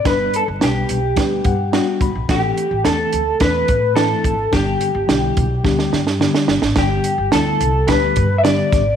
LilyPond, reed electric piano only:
\new Staff \with { instrumentName = "Reed electric piano" } { \time 4/4 \key g \major \tempo 4 = 107 <g b d' b'>8 r8 <g b d' b'>8 r8 <g b d' b'>8 fis''8 <g b d' fis' g''>8 b''8 | <e a c' a'>8 r8 <e a c' a'>8 r8 <e a c' a'>8 r8 <e a c' e'>8 r8 | <d g b g'>8 r8 <d g b e'>8 r8 <d g b g'>8 r8 <d g b g'>8 r8 | <d g b g'>8 r8 <d g b e'>8 r8 <d g b g'>8 r8 <d g b g'>8 r8 | }